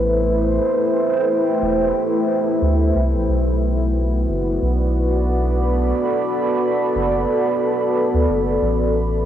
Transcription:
0.00 0.59 A1 loud
0.00 3.29 A3 medium
0.00 5.44 E4 medium
0.00 5.43 B4 medium
0.00 3.29 C5 medium
0.36 3.28 G5 medium
1.62 1.92 E1 medium
2.62 2.92 D2 loud
2.95 3.15 C2 medium
3.14 3.27 A1 medium
3.29 4.26 B1 loud
3.29 8.62 B3 medium
3.43 8.62 F#4 medium
4.29 4.58 F#1 medium
4.29 9.25 D5 medium
4.62 5.92 B1 loud
4.72 9.25 A4 medium
4.72 9.25 B5 medium
6.95 7.25 F#1 medium
8.14 8.27 D2 medium
8.28 8.58 F#1 loud
8.62 9.25 A1 loud
8.62 9.25 A3 medium

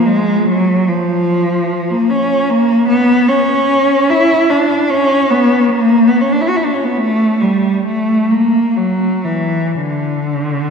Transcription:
0.06 0.46 G#3 loud
0.45 0.87 F#3 loud
0.87 1.90 F3 medium
1.90 2.10 A#3 medium
2.10 2.49 C#4 loud
2.50 2.89 A#3 loud
2.89 3.28 B3 loud
3.29 4.10 C#4 loud
4.10 4.51 E4 loud
4.50 4.90 D4 medium
4.90 5.31 C#4 loud
5.30 5.71 B3 loud
5.71 6.08 A#3 loud
6.07 6.22 B3 medium
6.21 6.33 C#4 medium
6.32 6.42 D4 medium
6.41 6.50 E4 medium
6.49 6.57 F#4 medium
6.56 6.65 E4 medium
6.65 6.75 D4 medium
6.74 6.85 C#4 medium
6.84 6.96 B3 medium
6.96 7.40 A3 loud
7.41 7.85 G3 medium
7.85 8.29 A3 medium
8.30 8.77 A#3 medium
8.77 9.25 F#3 medium
9.24 9.75 E3 medium
9.75 10.70 D3 medium

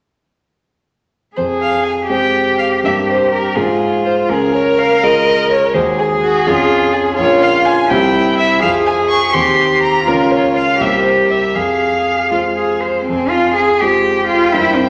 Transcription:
1.36 2.08 F2 soft
1.36 2.06 G#4 soft
1.36 1.44 C5 soft
1.61 1.84 F5 medium
1.84 1.92 G#5 soft
2.08 2.79 G#3 soft
2.08 2.79 C4 soft
2.08 3.57 G4 soft
2.08 2.79 C5 soft
2.08 2.57 G5 medium
2.58 2.66 F5 soft
2.84 3.54 G2 soft
2.84 3.52 A#3 soft
2.84 3.52 C4 soft
2.84 3.53 C5 soft
2.84 2.93 E5 medium
3.09 3.32 C5 medium
3.32 3.57 A#4 soft
3.55 4.27 G#2 soft
3.55 4.25 G#3 soft
3.55 4.31 F4 soft
3.55 4.26 F4 soft
3.55 4.04 G#4 medium
3.55 4.26 C5 soft
4.05 4.13 C5 medium
4.29 5.00 C#2 soft
4.29 4.53 G#4 medium
4.29 5.76 A#4 medium
4.54 4.80 C#5 medium
4.79 5.04 F5 medium
5.03 5.71 G#3 soft
5.03 5.71 F4 soft
5.03 5.71 G#4 soft
5.03 5.50 D#5 medium
5.51 5.73 C#5 medium
5.74 6.44 D#2 soft
5.74 6.42 G#3 soft
5.74 6.43 F#4 soft
5.74 7.16 G#4 medium
5.74 6.43 G#4 soft
5.74 5.82 C5 medium
5.98 6.06 G#4 medium
6.22 6.48 F#4 medium
6.47 7.16 F2 medium
6.47 7.14 C#4 soft
6.47 6.95 F4 medium
6.47 7.14 F4 soft
6.47 7.15 G#4 soft
6.93 7.16 G#4 medium
7.16 7.88 A#1 medium
7.16 7.86 C#4 soft
7.16 7.88 F4 medium
7.16 7.86 F4 soft
7.16 7.86 A#4 soft
7.16 7.44 C#5 medium
7.42 7.66 F5 medium
7.65 7.91 G#5 medium
7.89 8.60 C2 medium
7.89 8.58 C4 soft
7.89 8.62 E4 medium
7.89 8.58 E4 soft
7.89 8.59 G4 soft
7.89 8.37 G5 medium
8.37 8.61 E5 medium
8.60 9.32 F2 medium
8.60 9.30 C4 soft
8.60 9.30 F4 soft
8.60 9.33 G#4 medium
8.60 9.31 G#4 soft
8.60 8.70 F5 medium
8.86 8.94 G#5 medium
9.09 9.35 C#6 medium
9.33 10.05 D#2 soft
9.33 10.03 C4 soft
9.33 10.05 G4 medium
9.33 10.04 G4 soft
9.33 9.82 C6 medium
9.82 10.09 A#5 medium
10.05 10.78 C#2 soft
10.05 10.77 C#4 soft
10.05 10.78 F4 medium
10.05 10.77 F4 soft
10.05 10.33 A#4 medium
10.05 10.77 A#4 soft
10.31 10.55 C#5 medium
10.56 10.83 F5 medium
10.79 11.53 C2 soft
10.79 11.51 A#3 soft
10.79 11.57 G4 soft
10.79 11.52 G4 soft
10.79 11.52 C5 soft
10.79 11.03 E5 medium
11.04 11.32 C5 soft
11.30 11.56 E5 soft
11.54 12.28 F2 soft
11.54 12.26 G#4 soft
11.54 12.81 F5 medium
12.31 13.03 G#3 soft
12.31 12.39 F4 soft
12.31 13.03 F4 soft
12.31 13.04 C5 soft
12.56 12.82 G#4 soft
12.80 13.05 C5 soft
13.06 13.80 F2 soft
13.06 13.31 C4 medium
13.06 13.82 G#5 soft
13.30 13.55 F4 medium
13.55 13.82 G#4 medium
13.80 14.50 G#3 soft
13.80 14.50 F4 soft
13.80 14.27 G4 medium
13.80 14.51 C5 soft
13.80 14.89 G5 medium
14.28 14.54 F4 medium
14.52 14.89 G2 soft
14.52 14.89 A#3 soft
14.52 14.77 E4 medium
14.52 14.89 E4 soft
14.52 14.89 C5 soft
14.76 14.89 C4 medium

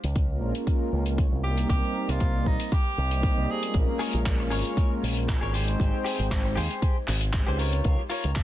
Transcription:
0.04 0.42 C#2 medium
0.04 closed hi-hat medium
0.16 kick loud
0.16 closed hi-hat medium
0.29 1.03 G#3 medium
0.29 1.03 A#3 medium
0.29 1.03 C#4 medium
0.29 1.04 F4 medium
0.29 1.04 A#4 medium
0.42 0.52 A#1 medium
0.55 closed hi-hat medium
0.67 kick loud
0.67 closed hi-hat medium
0.93 1.26 C#2 medium
1.06 1.22 G#3 medium
1.06 1.22 A#3 medium
1.06 1.22 C#4 medium
1.06 1.22 F4 medium
1.06 1.22 C#5 loud
1.06 closed hi-hat medium
1.18 kick loud
1.18 closed hi-hat medium
1.32 1.64 C2 medium
1.44 2.31 G3 medium
1.44 2.31 A#3 medium
1.44 2.32 C4 medium
1.44 2.32 D#4 medium
1.44 1.68 G4 medium
1.44 2.32 A#4 loud
1.58 closed hi-hat medium
1.69 1.80 C2 medium
1.69 2.11 G4 medium
1.69 kick loud
1.69 closed hi-hat medium
2.09 2.46 C2 medium
2.09 2.48 F4 medium
2.09 closed hi-hat medium
2.20 kick loud
2.20 closed hi-hat medium
2.34 2.44 G3 medium
2.34 2.44 A#3 medium
2.34 2.44 C4 medium
2.34 2.44 D#4 medium
2.34 2.44 A#4 medium
2.46 2.56 A#1 medium
2.46 2.74 D#4 medium
2.46 kick medium
2.60 closed hi-hat medium
2.72 3.52 G4 loud
2.72 kick loud
2.72 closed hi-hat medium
2.98 3.31 C2 medium
3.11 3.60 G3 loud
3.11 3.60 A#3 medium
3.11 3.60 C4 medium
3.11 3.60 D#4 medium
3.11 3.60 D#5 loud
3.11 closed hi-hat medium
3.23 kick loud
3.23 closed hi-hat medium
3.37 3.46 C2 medium
3.50 3.75 G#4 medium
3.62 4.36 G#3 medium
3.62 4.36 A#3 medium
3.62 4.37 C#4 medium
3.62 4.37 F4 medium
3.62 4.37 A#4 medium
3.62 closed hi-hat medium
3.74 3.85 A#1 medium
3.74 kick loud
3.74 closed hi-hat medium
3.99 4.20 G#4 loud
3.99 4.20 A#4 loud
3.99 4.20 C#5 loud
3.99 open hi-hat loud
4.13 4.52 A#1 medium
4.13 closed hi-hat medium
4.26 kick loud
4.26 clap loud
4.26 closed hi-hat medium
4.38 5.13 G#3 medium
4.38 5.13 A#3 medium
4.38 5.14 C#4 medium
4.38 5.14 F4 medium
4.38 5.14 A#4 medium
4.38 muted clean electric guitar stroke medium
4.50 4.62 G#1 medium
4.50 4.90 G#4 loud
4.50 4.91 A#4 medium
4.50 4.91 C#5 loud
4.50 open hi-hat medium
4.65 closed hi-hat medium
4.77 kick loud
4.77 closed hi-hat medium
5.03 5.36 A#1 medium
5.03 open hi-hat loud
5.16 5.32 G#3 medium
5.16 5.32 A#3 medium
5.16 5.32 C#4 medium
5.16 5.32 F4 medium
5.16 5.33 C5 loud
5.16 closed hi-hat medium
5.28 muted clean electric guitar stroke soft
5.28 kick loud
5.28 clap loud
5.28 closed hi-hat medium
5.41 5.75 G#1 medium
5.41 5.53 G#4 medium
5.41 5.53 A#4 medium
5.41 5.55 C#5 medium
5.53 6.41 G#3 medium
5.53 6.42 C4 medium
5.53 6.42 D#4 medium
5.53 5.95 G4 medium
5.53 5.96 G#4 medium
5.53 5.96 C5 loud
5.53 6.42 C5 loud
5.53 6.42 G5 medium
5.53 open hi-hat medium
5.68 closed hi-hat medium
5.80 5.90 G#1 medium
5.80 kick loud
5.80 closed hi-hat medium
6.04 6.25 G4 loud
6.04 6.25 G#4 loud
6.04 6.26 C5 loud
6.04 open hi-hat loud
6.19 6.58 G#1 medium
6.19 closed hi-hat medium
6.31 kick loud
6.31 clap loud
6.31 closed hi-hat medium
6.43 6.54 G#3 medium
6.43 6.54 C4 medium
6.43 6.54 D#4 medium
6.43 6.55 G4 medium
6.43 6.55 C5 loud
6.43 muted clean electric guitar stroke medium
6.56 6.67 D#2 medium
6.56 6.96 G4 loud
6.56 6.96 G#4 medium
6.56 6.96 C5 loud
6.56 open hi-hat medium
6.71 closed hi-hat medium
6.82 kick loud
6.82 closed hi-hat medium
7.08 7.41 G#1 medium
7.08 clap soft
7.08 open hi-hat medium
7.21 closed hi-hat medium
7.33 7.44 G#3 medium
7.33 7.44 C4 medium
7.33 7.45 D#4 medium
7.33 7.45 G4 medium
7.33 7.45 C5 medium
7.33 muted clean electric guitar stroke soft
7.33 kick loud
7.33 clap loud
7.33 closed hi-hat medium
7.47 7.80 C#2 medium
7.47 7.57 G#3 medium
7.47 7.57 C4 medium
7.47 7.57 D#4 medium
7.47 7.58 G4 medium
7.47 7.57 G4 medium
7.47 7.59 G#4 medium
7.47 7.59 C5 medium
7.47 7.57 C5 loud
7.58 8.00 F4 medium
7.58 8.01 A#4 medium
7.58 8.01 C#5 loud
7.58 open hi-hat medium
7.73 closed hi-hat medium
7.84 7.95 C#2 medium
7.84 kick loud
7.84 closed hi-hat medium
8.10 8.30 F4 loud
8.10 8.30 A#4 loud
8.10 8.31 C#5 loud
8.10 open hi-hat loud
8.24 8.43 C#2 medium
8.24 closed hi-hat medium
8.36 kick loud
8.36 clap loud
8.36 closed hi-hat medium

